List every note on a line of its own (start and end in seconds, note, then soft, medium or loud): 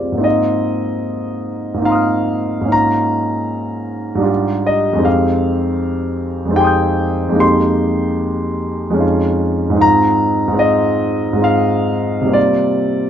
0.00 0.21 F2 soft
0.00 0.03 C4 soft
0.00 0.16 C4 soft
0.00 0.22 F4 soft
0.00 0.27 G4 soft
0.00 0.28 G#4 soft
0.00 0.27 C5 soft
0.00 0.24 D5 soft
0.12 1.73 G#2 soft
0.12 1.75 A#3 soft
0.18 1.78 C4 soft
0.18 1.79 D#4 soft
0.22 1.81 F4 soft
0.22 1.85 D#5 soft
1.74 2.60 G#2 soft
1.74 2.62 A#3 soft
1.79 2.66 C4 soft
1.79 2.67 D#4 soft
1.84 2.68 F4 soft
1.84 2.72 F5 medium
1.84 2.68 A#5 soft
1.89 2.70 C6 soft
1.89 2.71 D#6 soft
1.95 2.73 F6 soft
2.61 4.14 G#2 soft
2.61 4.21 A#3 soft
2.61 4.21 C#4 soft
2.68 4.23 D#4 soft
2.68 4.21 F4 soft
2.68 4.68 A#5 medium
4.15 4.97 G#2 soft
4.15 4.98 G3 soft
4.20 4.99 D4 soft
4.20 5.00 F4 soft
4.25 5.02 G4 soft
4.66 5.05 D#5 medium
4.93 6.44 F2 soft
4.93 6.47 G#3 soft
4.98 6.49 C4 soft
4.98 6.51 D#4 soft
5.03 6.53 G4 soft
5.03 6.58 F5 medium
6.45 7.27 F2 soft
6.45 7.30 G#3 soft
6.51 7.36 C4 soft
6.51 7.34 D#4 soft
6.56 7.37 G4 soft
6.56 7.41 G5 medium
6.56 7.38 G#5 soft
6.61 7.39 C6 soft
6.61 7.41 D#6 soft
6.67 7.42 G6 soft
7.29 8.89 F2 soft
7.29 8.90 G#3 soft
7.34 8.94 A#3 soft
7.34 8.95 D#4 soft
7.39 8.97 G4 soft
7.39 9.41 C6 medium
8.90 9.73 F2 soft
8.90 9.71 G#3 soft
8.94 9.76 C#4 soft
8.94 9.76 D#4 soft
9.00 9.78 F4 soft
9.70 10.46 G#2 soft
9.70 10.50 G#3 soft
9.75 10.52 C4 soft
9.75 10.54 D#4 soft
9.79 10.57 F4 soft
9.79 10.61 A#5 medium
10.48 11.31 G#2 soft
10.48 11.33 G#3 soft
10.54 11.37 C4 soft
10.54 11.38 D#4 soft
10.58 11.40 F4 soft
10.58 11.45 D#5 medium
11.33 12.26 G#2 soft
11.33 12.27 G#3 soft
11.38 12.28 C4 soft
11.38 12.29 D#4 soft
11.38 12.30 F4 soft
11.44 12.34 F5 medium
12.22 13.09 C3 soft
12.22 13.10 G3 soft
12.27 13.10 A#3 soft
12.27 13.10 C4 soft
12.32 13.10 F4 soft
12.32 13.10 D5 medium